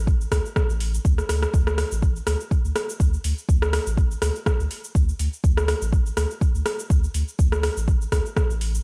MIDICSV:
0, 0, Header, 1, 3, 480
1, 0, Start_track
1, 0, Tempo, 487805
1, 1511, Time_signature, 4, 2, 24, 8
1, 8690, End_track
2, 0, Start_track
2, 0, Title_t, "Sub bass"
2, 0, Program_c, 0, 38
2, 0, Note_on_c, 0, 33, 78
2, 250, Note_off_c, 0, 33, 0
2, 311, Note_on_c, 0, 38, 97
2, 397, Note_off_c, 0, 38, 0
2, 685, Note_on_c, 0, 33, 88
2, 972, Note_off_c, 0, 33, 0
2, 1032, Note_on_c, 0, 38, 79
2, 1196, Note_off_c, 0, 38, 0
2, 1272, Note_on_c, 0, 38, 78
2, 1436, Note_off_c, 0, 38, 0
2, 1511, Note_on_c, 0, 38, 96
2, 1809, Note_off_c, 0, 38, 0
2, 1885, Note_on_c, 0, 33, 80
2, 2171, Note_off_c, 0, 33, 0
2, 2232, Note_on_c, 0, 38, 98
2, 2317, Note_off_c, 0, 38, 0
2, 2604, Note_on_c, 0, 38, 96
2, 2674, Note_off_c, 0, 38, 0
2, 2951, Note_on_c, 0, 38, 95
2, 3115, Note_off_c, 0, 38, 0
2, 3193, Note_on_c, 0, 38, 90
2, 3278, Note_off_c, 0, 38, 0
2, 3431, Note_on_c, 0, 38, 97
2, 3729, Note_off_c, 0, 38, 0
2, 3803, Note_on_c, 0, 33, 78
2, 4090, Note_off_c, 0, 33, 0
2, 4150, Note_on_c, 0, 38, 96
2, 4236, Note_off_c, 0, 38, 0
2, 4523, Note_on_c, 0, 38, 101
2, 4593, Note_off_c, 0, 38, 0
2, 4871, Note_on_c, 0, 38, 97
2, 5035, Note_off_c, 0, 38, 0
2, 5112, Note_on_c, 0, 38, 91
2, 5197, Note_off_c, 0, 38, 0
2, 5351, Note_on_c, 0, 38, 99
2, 5649, Note_off_c, 0, 38, 0
2, 5722, Note_on_c, 0, 33, 80
2, 6010, Note_off_c, 0, 33, 0
2, 6069, Note_on_c, 0, 38, 95
2, 6156, Note_off_c, 0, 38, 0
2, 6443, Note_on_c, 0, 38, 99
2, 6513, Note_off_c, 0, 38, 0
2, 6791, Note_on_c, 0, 38, 93
2, 6955, Note_off_c, 0, 38, 0
2, 7029, Note_on_c, 0, 38, 88
2, 7116, Note_off_c, 0, 38, 0
2, 7271, Note_on_c, 0, 38, 96
2, 7569, Note_off_c, 0, 38, 0
2, 7642, Note_on_c, 0, 33, 78
2, 7930, Note_off_c, 0, 33, 0
2, 7991, Note_on_c, 0, 38, 96
2, 8077, Note_off_c, 0, 38, 0
2, 8362, Note_on_c, 0, 33, 87
2, 8650, Note_off_c, 0, 33, 0
2, 8690, End_track
3, 0, Start_track
3, 0, Title_t, "Drums"
3, 71, Note_on_c, 9, 36, 109
3, 75, Note_on_c, 9, 69, 49
3, 170, Note_off_c, 9, 36, 0
3, 174, Note_off_c, 9, 69, 0
3, 208, Note_on_c, 9, 69, 48
3, 306, Note_off_c, 9, 69, 0
3, 311, Note_on_c, 9, 36, 54
3, 312, Note_on_c, 9, 37, 81
3, 312, Note_on_c, 9, 46, 90
3, 315, Note_on_c, 9, 69, 86
3, 410, Note_off_c, 9, 36, 0
3, 410, Note_off_c, 9, 37, 0
3, 410, Note_off_c, 9, 46, 0
3, 413, Note_off_c, 9, 69, 0
3, 448, Note_on_c, 9, 69, 49
3, 547, Note_off_c, 9, 69, 0
3, 552, Note_on_c, 9, 36, 111
3, 552, Note_on_c, 9, 37, 85
3, 555, Note_on_c, 9, 69, 51
3, 650, Note_off_c, 9, 36, 0
3, 650, Note_off_c, 9, 37, 0
3, 653, Note_off_c, 9, 69, 0
3, 686, Note_on_c, 9, 69, 48
3, 785, Note_off_c, 9, 69, 0
3, 791, Note_on_c, 9, 46, 86
3, 794, Note_on_c, 9, 69, 46
3, 890, Note_off_c, 9, 46, 0
3, 893, Note_off_c, 9, 69, 0
3, 928, Note_on_c, 9, 69, 84
3, 1026, Note_off_c, 9, 69, 0
3, 1032, Note_on_c, 9, 36, 113
3, 1035, Note_on_c, 9, 69, 85
3, 1130, Note_off_c, 9, 36, 0
3, 1134, Note_off_c, 9, 69, 0
3, 1164, Note_on_c, 9, 37, 50
3, 1167, Note_on_c, 9, 69, 50
3, 1262, Note_off_c, 9, 37, 0
3, 1265, Note_off_c, 9, 69, 0
3, 1272, Note_on_c, 9, 37, 75
3, 1272, Note_on_c, 9, 46, 89
3, 1275, Note_on_c, 9, 69, 85
3, 1370, Note_off_c, 9, 37, 0
3, 1370, Note_off_c, 9, 46, 0
3, 1373, Note_off_c, 9, 69, 0
3, 1402, Note_on_c, 9, 37, 74
3, 1405, Note_on_c, 9, 69, 49
3, 1501, Note_off_c, 9, 37, 0
3, 1504, Note_off_c, 9, 69, 0
3, 1512, Note_on_c, 9, 36, 114
3, 1514, Note_on_c, 9, 69, 88
3, 1610, Note_off_c, 9, 36, 0
3, 1612, Note_off_c, 9, 69, 0
3, 1643, Note_on_c, 9, 37, 91
3, 1646, Note_on_c, 9, 69, 49
3, 1742, Note_off_c, 9, 37, 0
3, 1745, Note_off_c, 9, 69, 0
3, 1751, Note_on_c, 9, 37, 92
3, 1751, Note_on_c, 9, 46, 89
3, 1754, Note_on_c, 9, 69, 50
3, 1849, Note_off_c, 9, 37, 0
3, 1849, Note_off_c, 9, 46, 0
3, 1852, Note_off_c, 9, 69, 0
3, 1885, Note_on_c, 9, 69, 89
3, 1983, Note_off_c, 9, 69, 0
3, 1992, Note_on_c, 9, 36, 114
3, 1993, Note_on_c, 9, 69, 52
3, 2090, Note_off_c, 9, 36, 0
3, 2091, Note_off_c, 9, 69, 0
3, 2126, Note_on_c, 9, 69, 50
3, 2225, Note_off_c, 9, 69, 0
3, 2231, Note_on_c, 9, 37, 82
3, 2231, Note_on_c, 9, 46, 89
3, 2234, Note_on_c, 9, 69, 86
3, 2329, Note_off_c, 9, 37, 0
3, 2329, Note_off_c, 9, 46, 0
3, 2332, Note_off_c, 9, 69, 0
3, 2367, Note_on_c, 9, 69, 51
3, 2465, Note_off_c, 9, 69, 0
3, 2471, Note_on_c, 9, 36, 115
3, 2475, Note_on_c, 9, 69, 52
3, 2570, Note_off_c, 9, 36, 0
3, 2573, Note_off_c, 9, 69, 0
3, 2607, Note_on_c, 9, 69, 50
3, 2706, Note_off_c, 9, 69, 0
3, 2712, Note_on_c, 9, 37, 88
3, 2712, Note_on_c, 9, 46, 88
3, 2715, Note_on_c, 9, 69, 50
3, 2810, Note_off_c, 9, 37, 0
3, 2810, Note_off_c, 9, 46, 0
3, 2813, Note_off_c, 9, 69, 0
3, 2847, Note_on_c, 9, 69, 88
3, 2946, Note_off_c, 9, 69, 0
3, 2952, Note_on_c, 9, 36, 113
3, 2954, Note_on_c, 9, 69, 91
3, 3050, Note_off_c, 9, 36, 0
3, 3052, Note_off_c, 9, 69, 0
3, 3086, Note_on_c, 9, 69, 50
3, 3185, Note_off_c, 9, 69, 0
3, 3191, Note_on_c, 9, 46, 90
3, 3194, Note_on_c, 9, 69, 88
3, 3290, Note_off_c, 9, 46, 0
3, 3293, Note_off_c, 9, 69, 0
3, 3327, Note_on_c, 9, 69, 49
3, 3425, Note_off_c, 9, 69, 0
3, 3431, Note_on_c, 9, 36, 116
3, 3435, Note_on_c, 9, 69, 89
3, 3530, Note_off_c, 9, 36, 0
3, 3534, Note_off_c, 9, 69, 0
3, 3565, Note_on_c, 9, 37, 90
3, 3568, Note_on_c, 9, 69, 50
3, 3663, Note_off_c, 9, 37, 0
3, 3666, Note_off_c, 9, 69, 0
3, 3672, Note_on_c, 9, 37, 97
3, 3672, Note_on_c, 9, 46, 89
3, 3675, Note_on_c, 9, 69, 54
3, 3771, Note_off_c, 9, 37, 0
3, 3771, Note_off_c, 9, 46, 0
3, 3774, Note_off_c, 9, 69, 0
3, 3807, Note_on_c, 9, 69, 91
3, 3905, Note_off_c, 9, 69, 0
3, 3911, Note_on_c, 9, 36, 122
3, 3915, Note_on_c, 9, 69, 53
3, 4010, Note_off_c, 9, 36, 0
3, 4013, Note_off_c, 9, 69, 0
3, 4047, Note_on_c, 9, 69, 51
3, 4145, Note_off_c, 9, 69, 0
3, 4151, Note_on_c, 9, 37, 85
3, 4151, Note_on_c, 9, 46, 86
3, 4154, Note_on_c, 9, 69, 92
3, 4250, Note_off_c, 9, 37, 0
3, 4250, Note_off_c, 9, 46, 0
3, 4253, Note_off_c, 9, 69, 0
3, 4287, Note_on_c, 9, 69, 54
3, 4386, Note_off_c, 9, 69, 0
3, 4391, Note_on_c, 9, 36, 117
3, 4392, Note_on_c, 9, 37, 88
3, 4395, Note_on_c, 9, 69, 52
3, 4490, Note_off_c, 9, 36, 0
3, 4491, Note_off_c, 9, 37, 0
3, 4494, Note_off_c, 9, 69, 0
3, 4527, Note_on_c, 9, 69, 53
3, 4626, Note_off_c, 9, 69, 0
3, 4632, Note_on_c, 9, 46, 83
3, 4635, Note_on_c, 9, 69, 50
3, 4731, Note_off_c, 9, 46, 0
3, 4734, Note_off_c, 9, 69, 0
3, 4766, Note_on_c, 9, 69, 91
3, 4864, Note_off_c, 9, 69, 0
3, 4871, Note_on_c, 9, 36, 122
3, 4874, Note_on_c, 9, 69, 95
3, 4970, Note_off_c, 9, 36, 0
3, 4973, Note_off_c, 9, 69, 0
3, 5007, Note_on_c, 9, 69, 53
3, 5106, Note_off_c, 9, 69, 0
3, 5112, Note_on_c, 9, 46, 85
3, 5115, Note_on_c, 9, 69, 88
3, 5210, Note_off_c, 9, 46, 0
3, 5213, Note_off_c, 9, 69, 0
3, 5248, Note_on_c, 9, 69, 52
3, 5346, Note_off_c, 9, 69, 0
3, 5351, Note_on_c, 9, 36, 120
3, 5355, Note_on_c, 9, 69, 91
3, 5450, Note_off_c, 9, 36, 0
3, 5453, Note_off_c, 9, 69, 0
3, 5485, Note_on_c, 9, 37, 88
3, 5488, Note_on_c, 9, 69, 52
3, 5584, Note_off_c, 9, 37, 0
3, 5587, Note_off_c, 9, 69, 0
3, 5592, Note_on_c, 9, 37, 92
3, 5592, Note_on_c, 9, 46, 86
3, 5595, Note_on_c, 9, 69, 55
3, 5690, Note_off_c, 9, 37, 0
3, 5690, Note_off_c, 9, 46, 0
3, 5693, Note_off_c, 9, 69, 0
3, 5727, Note_on_c, 9, 69, 95
3, 5825, Note_off_c, 9, 69, 0
3, 5831, Note_on_c, 9, 36, 120
3, 5835, Note_on_c, 9, 69, 54
3, 5929, Note_off_c, 9, 36, 0
3, 5933, Note_off_c, 9, 69, 0
3, 5965, Note_on_c, 9, 69, 52
3, 6064, Note_off_c, 9, 69, 0
3, 6071, Note_on_c, 9, 37, 81
3, 6071, Note_on_c, 9, 46, 83
3, 6075, Note_on_c, 9, 69, 92
3, 6170, Note_off_c, 9, 37, 0
3, 6170, Note_off_c, 9, 46, 0
3, 6173, Note_off_c, 9, 69, 0
3, 6207, Note_on_c, 9, 69, 54
3, 6306, Note_off_c, 9, 69, 0
3, 6311, Note_on_c, 9, 36, 120
3, 6314, Note_on_c, 9, 69, 55
3, 6409, Note_off_c, 9, 36, 0
3, 6412, Note_off_c, 9, 69, 0
3, 6446, Note_on_c, 9, 69, 51
3, 6544, Note_off_c, 9, 69, 0
3, 6550, Note_on_c, 9, 37, 88
3, 6550, Note_on_c, 9, 46, 82
3, 6553, Note_on_c, 9, 69, 53
3, 6648, Note_off_c, 9, 37, 0
3, 6648, Note_off_c, 9, 46, 0
3, 6651, Note_off_c, 9, 69, 0
3, 6685, Note_on_c, 9, 69, 93
3, 6783, Note_off_c, 9, 69, 0
3, 6791, Note_on_c, 9, 36, 127
3, 6793, Note_on_c, 9, 69, 94
3, 6889, Note_off_c, 9, 36, 0
3, 6892, Note_off_c, 9, 69, 0
3, 6925, Note_on_c, 9, 69, 54
3, 7023, Note_off_c, 9, 69, 0
3, 7030, Note_on_c, 9, 46, 83
3, 7033, Note_on_c, 9, 69, 93
3, 7128, Note_off_c, 9, 46, 0
3, 7131, Note_off_c, 9, 69, 0
3, 7165, Note_on_c, 9, 69, 54
3, 7263, Note_off_c, 9, 69, 0
3, 7271, Note_on_c, 9, 36, 119
3, 7273, Note_on_c, 9, 69, 91
3, 7369, Note_off_c, 9, 36, 0
3, 7371, Note_off_c, 9, 69, 0
3, 7402, Note_on_c, 9, 37, 88
3, 7405, Note_on_c, 9, 69, 50
3, 7501, Note_off_c, 9, 37, 0
3, 7504, Note_off_c, 9, 69, 0
3, 7511, Note_on_c, 9, 37, 89
3, 7511, Note_on_c, 9, 46, 85
3, 7514, Note_on_c, 9, 69, 52
3, 7609, Note_off_c, 9, 37, 0
3, 7609, Note_off_c, 9, 46, 0
3, 7613, Note_off_c, 9, 69, 0
3, 7645, Note_on_c, 9, 69, 90
3, 7744, Note_off_c, 9, 69, 0
3, 7751, Note_on_c, 9, 36, 117
3, 7753, Note_on_c, 9, 69, 54
3, 7849, Note_off_c, 9, 36, 0
3, 7852, Note_off_c, 9, 69, 0
3, 7886, Note_on_c, 9, 69, 52
3, 7985, Note_off_c, 9, 69, 0
3, 7991, Note_on_c, 9, 36, 60
3, 7992, Note_on_c, 9, 37, 79
3, 7992, Note_on_c, 9, 46, 82
3, 7995, Note_on_c, 9, 69, 91
3, 8089, Note_off_c, 9, 36, 0
3, 8090, Note_off_c, 9, 37, 0
3, 8090, Note_off_c, 9, 46, 0
3, 8093, Note_off_c, 9, 69, 0
3, 8127, Note_on_c, 9, 69, 53
3, 8225, Note_off_c, 9, 69, 0
3, 8231, Note_on_c, 9, 36, 119
3, 8232, Note_on_c, 9, 37, 82
3, 8235, Note_on_c, 9, 69, 53
3, 8329, Note_off_c, 9, 36, 0
3, 8330, Note_off_c, 9, 37, 0
3, 8333, Note_off_c, 9, 69, 0
3, 8367, Note_on_c, 9, 69, 53
3, 8466, Note_off_c, 9, 69, 0
3, 8473, Note_on_c, 9, 46, 81
3, 8476, Note_on_c, 9, 69, 50
3, 8571, Note_off_c, 9, 46, 0
3, 8574, Note_off_c, 9, 69, 0
3, 8607, Note_on_c, 9, 69, 94
3, 8690, Note_off_c, 9, 69, 0
3, 8690, End_track
0, 0, End_of_file